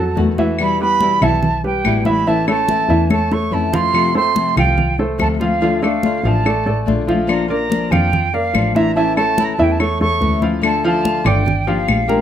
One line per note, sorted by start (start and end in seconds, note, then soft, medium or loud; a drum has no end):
0.00 0.16 F2 medium
0.00 0.31 F#3 medium
0.00 0.31 F#4 medium
0.00 0.31 A4 medium
0.00 0.18 A5 medium
0.15 1.16 E2 medium
0.15 0.36 B2 medium
0.15 0.37 D#3 medium
0.15 0.37 A3 medium
0.15 0.37 B3 medium
0.15 0.37 F#4 medium
0.15 high conga medium
0.38 0.73 E3 medium
0.38 0.59 A3 soft
0.38 0.59 B3 soft
0.38 0.73 E4 medium
0.38 0.58 F#4 soft
0.38 0.73 E5 medium
0.38 high conga medium
0.59 0.79 B2 medium
0.59 0.79 E3 medium
0.59 0.80 G3 medium
0.59 0.80 B3 medium
0.59 0.79 E4 medium
0.59 0.80 B5 loud
0.59 high conga soft
0.59 claves medium
0.80 1.15 G3 medium
0.80 1.00 G3 soft
0.80 1.01 B3 medium
0.80 1.00 E4 medium
0.80 1.15 G4 medium
0.80 1.15 B4 medium
0.80 1.25 B5 loud
0.80 high conga soft
1.00 1.21 B2 medium
1.00 1.21 E3 medium
1.00 1.21 G3 medium
1.00 1.22 B3 medium
1.00 1.22 E4 medium
1.00 high conga medium
1.22 1.81 B1 medium
1.22 1.56 E3 medium
1.22 1.43 G3 soft
1.22 1.43 B3 medium
1.22 1.56 E4 medium
1.22 1.42 E4 medium
1.22 1.57 E5 medium
1.22 1.64 A5 loud
1.22 high conga soft
1.22 low conga medium
1.22 claves medium
1.43 muted nylon-string guitar stroke medium
1.43 high conga soft
1.43 low conga medium
1.64 1.98 G3 medium
1.64 1.98 G4 medium
1.64 1.98 B4 medium
1.64 2.04 G5 loud
1.64 high conga soft
1.84 2.83 A1 medium
1.84 2.05 B2 medium
1.84 2.05 E3 medium
1.84 2.05 G3 medium
1.84 2.05 B3 medium
1.84 2.04 E4 medium
1.84 high conga medium
1.84 claves medium
2.05 2.23 E3 medium
2.05 2.27 G3 soft
2.05 2.26 B3 soft
2.05 2.25 E4 soft
2.05 2.23 E4 medium
2.05 2.23 E5 medium
2.05 2.29 B5 loud
2.05 high conga medium
2.27 2.47 E3 medium
2.27 2.44 E3 medium
2.27 2.47 A3 medium
2.27 2.47 C#4 medium
2.27 2.44 E4 medium
2.27 2.46 E4 medium
2.27 2.44 E5 medium
2.27 2.48 A5 loud
2.27 high conga soft
2.47 2.82 A3 medium
2.47 2.67 A3 soft
2.47 2.68 C#4 soft
2.47 2.67 E4 soft
2.47 2.82 A4 medium
2.47 2.82 C#5 medium
2.47 3.07 A5 loud
2.47 high conga soft
2.47 claves medium
2.68 2.88 E3 medium
2.68 2.88 A3 medium
2.68 2.89 C#4 medium
2.68 2.87 E4 medium
2.68 high conga medium
2.88 3.48 E2 loud
2.88 3.07 E3 medium
2.88 3.09 A3 soft
2.88 3.10 C#4 soft
2.88 3.09 E4 soft
2.88 3.07 E4 medium
2.88 3.07 E5 medium
2.88 high conga soft
3.10 3.27 A3 medium
3.10 3.28 A4 medium
3.10 3.28 C#5 medium
3.10 3.34 A5 loud
3.10 muted nylon-string guitar stroke medium
3.10 high conga loud
3.10 claves medium
3.31 3.66 A3 medium
3.31 3.66 A4 medium
3.31 3.66 C#5 medium
3.31 3.55 C#6 loud
3.31 high conga medium
3.51 4.50 F2 medium
3.51 3.72 E3 medium
3.51 3.72 A3 medium
3.51 3.72 C#4 medium
3.51 3.71 E4 medium
3.51 3.76 A5 medium
3.72 4.07 F3 medium
3.72 3.93 A3 soft
3.72 3.93 C#4 soft
3.72 3.93 E4 soft
3.72 4.08 F4 medium
3.72 4.08 F5 medium
3.72 4.16 C6 loud
3.72 low conga medium
3.93 4.14 C3 medium
3.93 4.14 F3 medium
3.93 4.14 A3 medium
3.93 4.14 C4 medium
3.93 4.13 F4 medium
3.93 high conga soft
3.93 claves medium
4.14 4.49 A3 medium
4.14 4.34 A3 soft
4.14 4.35 C4 medium
4.14 4.35 F4 soft
4.14 4.49 A4 medium
4.14 4.50 C5 medium
4.14 4.55 C6 loud
4.14 high conga soft
4.35 4.55 C3 medium
4.35 4.56 F3 medium
4.35 4.56 A3 medium
4.35 4.56 C4 medium
4.35 4.55 F4 medium
4.35 high conga medium
4.56 5.16 C2 loud
4.56 4.91 F3 medium
4.56 4.76 A3 soft
4.56 4.77 C4 soft
4.56 4.77 F4 medium
4.56 4.92 F4 medium
4.56 4.92 F5 medium
4.56 4.97 G5 loud
4.56 high conga soft
4.56 low conga medium
4.56 claves medium
4.77 muted nylon-string guitar stroke medium
4.77 high conga soft
4.77 low conga medium
4.98 5.33 A3 medium
4.98 5.33 A4 medium
4.98 5.34 C5 medium
4.98 high conga soft
5.18 6.19 D2 medium
5.18 5.39 C3 medium
5.18 5.39 F3 medium
5.18 5.40 A3 medium
5.18 5.39 C4 medium
5.18 5.38 F4 medium
5.18 5.27 A5 medium
5.18 high conga medium
5.18 claves medium
5.40 5.58 F3 medium
5.40 5.60 A3 soft
5.40 5.61 C4 soft
5.40 5.60 F4 medium
5.40 5.58 F4 medium
5.40 5.58 F5 medium
5.40 5.80 F5 medium
5.40 high conga medium
5.61 5.81 D3 medium
5.61 5.79 F3 medium
5.61 5.82 A3 medium
5.61 5.82 D4 medium
5.61 5.79 F4 medium
5.61 5.81 F4 medium
5.61 5.79 F5 medium
5.61 high conga soft
5.82 6.17 A3 medium
5.82 6.03 A3 soft
5.82 6.03 D4 medium
5.82 6.02 F4 soft
5.82 6.17 A4 medium
5.82 6.17 D5 medium
5.82 6.28 F5 medium
5.82 high conga soft
5.82 claves medium
6.03 6.24 D3 medium
6.03 6.24 A3 medium
6.03 6.24 D4 medium
6.03 6.23 F4 medium
6.03 high conga medium
6.24 6.63 A1 medium
6.24 6.42 F3 medium
6.24 6.44 A3 soft
6.24 6.45 D4 soft
6.24 6.44 F4 soft
6.24 6.42 F4 medium
6.24 6.42 F5 medium
6.24 6.88 A5 medium
6.24 high conga soft
6.45 6.63 A3 medium
6.45 6.63 A4 medium
6.45 6.63 D5 medium
6.45 muted nylon-string guitar stroke medium
6.45 high conga soft
6.45 claves medium
6.66 6.86 A1 medium
6.66 7.00 A3 medium
6.66 7.01 A4 medium
6.66 7.01 D5 medium
6.66 high conga soft
6.86 7.86 A#1 medium
6.86 7.07 D3 medium
6.86 7.07 A3 medium
6.86 7.07 D4 medium
6.86 7.06 F4 medium
6.86 high conga medium
7.07 7.42 F3 medium
7.07 7.28 A3 soft
7.07 7.27 D4 soft
7.07 7.28 F4 soft
7.07 7.43 F4 medium
7.07 7.43 F5 medium
7.07 high conga medium
7.27 7.48 F3 medium
7.27 7.49 A#3 medium
7.27 7.48 D4 medium
7.27 7.47 F4 medium
7.27 7.49 A#5 medium
7.27 high conga soft
7.27 claves medium
7.48 7.84 A#3 medium
7.48 7.69 A#3 soft
7.48 7.70 D4 soft
7.48 7.69 F4 soft
7.48 7.84 A#4 medium
7.48 7.84 D5 medium
7.48 7.92 A#5 medium
7.48 high conga soft
7.69 7.90 F3 medium
7.69 7.91 A#3 medium
7.69 7.91 D4 medium
7.69 7.90 F4 medium
7.69 high conga medium
7.91 8.50 F2 medium
7.91 8.26 F3 medium
7.91 8.12 A#3 soft
7.91 8.12 D4 soft
7.91 8.12 F4 soft
7.91 8.26 F4 medium
7.91 8.26 F5 medium
7.91 8.35 G5 loud
7.91 high conga soft
7.91 low conga medium
7.91 claves medium
8.12 muted nylon-string guitar stroke medium
8.12 high conga soft
8.12 low conga medium
8.33 8.68 A#3 medium
8.33 8.68 A#4 medium
8.33 8.68 D5 medium
8.33 8.76 F5 medium
8.33 high conga soft
8.54 9.53 A1 medium
8.54 8.74 F3 medium
8.54 8.75 A#3 medium
8.54 8.75 D4 medium
8.54 8.74 F4 medium
8.54 high conga medium
8.54 claves medium
8.75 8.93 E3 medium
8.75 8.96 A#3 soft
8.75 8.96 D4 soft
8.75 8.93 E4 medium
8.75 8.95 F4 medium
8.75 8.93 E5 loud
8.75 8.94 A#5 medium
8.75 high conga medium
8.95 9.16 E3 medium
8.95 9.13 E3 medium
8.95 9.17 A3 medium
8.95 9.16 C#4 medium
8.95 9.14 E4 medium
8.95 9.15 E4 medium
8.95 9.14 E5 medium
8.95 9.15 A5 loud
8.95 high conga soft
9.16 9.51 A3 medium
9.16 9.37 A3 soft
9.16 9.38 C#4 medium
9.16 9.37 E4 medium
9.16 9.52 A4 medium
9.16 9.52 C#5 medium
9.16 9.45 A5 loud
9.16 high conga soft
9.16 claves medium
9.37 9.58 E3 medium
9.37 9.58 A3 medium
9.37 9.58 C#4 medium
9.37 9.57 E4 medium
9.37 high conga medium
9.44 9.55 A#5 medium
9.53 9.64 A5 medium
9.58 9.98 E2 loud
9.58 9.76 E3 medium
9.58 9.79 A3 soft
9.58 9.79 C#4 soft
9.58 9.79 E4 soft
9.58 9.76 E4 medium
9.58 9.76 E5 medium
9.58 high conga soft
9.62 9.73 G5 medium
9.71 9.81 A5 medium
9.79 9.97 A3 medium
9.79 9.97 A4 medium
9.79 9.97 C#5 medium
9.79 10.00 C#6 loud
9.79 muted nylon-string guitar stroke medium
9.79 high conga soft
9.79 claves medium
10.00 10.20 E2 medium
10.00 10.35 A3 medium
10.00 10.35 A4 medium
10.00 10.36 C#5 medium
10.00 10.40 C#6 loud
10.00 high conga soft
10.20 11.20 D2 medium
10.20 10.41 E3 medium
10.20 10.42 A3 medium
10.20 10.41 C#4 medium
10.20 10.40 E4 medium
10.20 high conga medium
10.41 10.60 F3 medium
10.41 10.61 A3 soft
10.41 10.63 C#4 soft
10.41 10.62 E4 soft
10.41 10.60 F4 medium
10.41 10.60 F5 medium
10.41 high conga medium
10.62 11.24 D3 medium
10.62 11.25 A3 medium
10.62 11.24 D4 medium
10.62 11.23 F4 loud
10.62 10.83 A5 loud
10.62 high conga soft
10.62 claves medium
10.84 11.19 F3 loud
10.84 11.19 F4 loud
10.84 11.19 F5 loud
10.84 11.28 A5 medium
10.84 high conga soft
11.05 high conga medium
11.24 11.84 G1 loud
11.24 11.46 A3 medium
11.24 11.45 D4 medium
11.24 11.60 D4 medium
11.24 11.45 F4 medium
11.24 11.60 D5 medium
11.24 11.69 G5 medium
11.24 11.60 D6 medium
11.24 high conga soft
11.24 low conga medium
11.24 claves medium
11.45 muted nylon-string guitar stroke medium
11.45 high conga soft
11.45 low conga medium
11.67 12.02 F3 medium
11.67 12.08 A#3 soft
11.67 12.08 D4 soft
11.67 12.02 F4 medium
11.67 12.07 G4 medium
11.67 12.21 F5 medium
11.67 12.02 F5 medium
11.67 high conga soft
11.88 12.21 A#1 medium
11.88 high conga medium
11.88 claves medium
12.08 12.21 F3 medium
12.08 12.21 A#3 medium
12.08 12.21 D4 medium
12.08 12.21 G4 medium
12.08 12.21 A#4 medium
12.08 12.21 A#5 medium
12.08 high conga medium